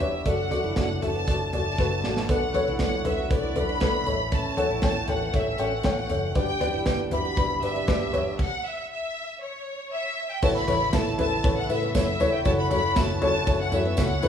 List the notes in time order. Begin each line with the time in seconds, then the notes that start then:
Already playing: G2 G3 B3 D4 D5 E5
0.00 E1 G4 B4 C#5, closed hi-hat, floor tom
0.26 F#1 F#3 A3 D4 F#4 A4 D5 F#5, kick, closed hi-hat
0.51 F#4 A4 D5, closed hi-hat, floor tom
0.64 F#1 E4
0.76 F#1 D4 F#4 A4 D5 F#5, kick, snare, closed hi-hat
1.01 F#1 F#4 A4 E5 A5, closed hi-hat, floor tom
1.15 B3
1.27 F#1 F#4 A4 D5, kick, closed hi-hat
1.53 F#1 D4 F#4 A4 D5 A5, closed hi-hat, floor tom
1.78 F#1 F#4 A4 B4, kick, snare
2.04 A1 F#4 A4 D5, snare
2.17 snare
2.29 B1 B2 D3 B3 F#4 A4 B4 D5 F#5, kick, closed hi-hat
2.54 A4 B4 C#5, closed hi-hat, floor tom
2.68 B1 E4
2.79 B1 A4 B4 D5 F#5, kick, snare, closed hi-hat
2.93 D4
3.05 B1 A4 B4 E5, closed hi-hat, floor tom
3.18 F#4
3.30 B1 A4 B4 D5, kick, closed hi-hat
3.43 E4
3.56 B1 A4 B4 D5 B5, closed hi-hat, floor tom
3.69 D4
3.80 B1 A4 B4 D5, kick, snare, closed hi-hat
4.06 A1 A2 E3 C#4 A4 C#5 D#5, closed hi-hat, floor tom
4.13 E5
4.32 C#4 A5, kick, closed hi-hat
4.57 A4 C#5 F#5, closed hi-hat, floor tom
4.70 A1 E4
4.82 A1 C#4 A4 C#5 G5 A5, kick, snare, closed hi-hat
5.08 A1 A4 C#5 F#5 G5, closed hi-hat, floor tom
5.22 B3
5.33 A1 A4 C#5 E5, kick, closed hi-hat
5.58 A1 C#4 A4 C#5 F#5 G5, closed hi-hat
5.83 A1 A4 C#5 G5, kick, snare, closed hi-hat
6.09 F#1 A4 C#5 E5, closed hi-hat, floor tom
6.35 G1 G2 G3 B3 D4 G4 B4 D5 G5, kick, closed hi-hat
6.60 G4 B4 D5, closed hi-hat, floor tom
6.74 G1 E4
6.86 G1 G4 B4 D5 G5, kick, snare, closed hi-hat
7.00 D4
7.11 G1 G4 B4 E5 B5, closed hi-hat, floor tom
7.25 F#4
7.37 G1 G4 B4 D5, kick, closed hi-hat
7.50 E4
7.62 G1 G4 B4 D5 E5, closed hi-hat
7.76 D4
7.87 G1 G4 B4 D5, kick, snare, closed hi-hat
8.13 G1 G4 B4 C#5, closed hi-hat, floor tom
8.39 F#5, kick, crash
8.65 E5
8.91 E5
9.42 C#5
9.93 E5
10.31 G5
10.42 A1 A2 C#3 E3 A3 B3 E4 F#4 A4 B4 C#5 A5, kick, crash, tambourine
10.55 B5
10.68 A1 E4 A4 B4 C#5 B5, floor tom, ride, tambourine
10.93 A1 E4 A4 B4 E5 A5, kick, snare, ride, tambourine
11.18 A1 C#4 E4 A4 B4 E5 A5, floor tom, ride, tambourine
11.44 A1 C#4 E4 A4 B4 C#5, kick, ride
11.58 F#5
11.69 A2 E4 A4 B4 E5, ride, tambourine
11.83 B3
11.94 F#2 E4 A4 B4 C#5 E5, kick, snare, ride, tambourine
12.20 E1 E4 A4 B4 C#5, snare, floor tom, ride, tambourine
12.34 G5
12.45 F#1 F#3 C#4 E4 F#4 A4 C#5 A5, kick, ride, tambourine
12.58 B5
12.70 F#1 E4 F#4 A4 C#5 B5, floor tom, ride, tambourine
12.96 F#1 E4 F#4 A4 E5 A5, kick, snare, ride, tambourine
13.21 F#1 C#4 E4 F#4 A4 C#5 A5, floor tom, ride, tambourine
13.46 F#1 C#4 E4 F#4 A4 C#5, kick, ride, tambourine
13.61 F#5
13.72 F#2 E4 F#4 A4 C#5 E5, floor tom, ride, tambourine
13.85 B3
13.97 C#2 E4 F#4 A4 E5 F#5, kick, snare, ride, tambourine
14.22 F#1 C#4 E4 F#4 A4 B4, snare, floor tom, ride, tambourine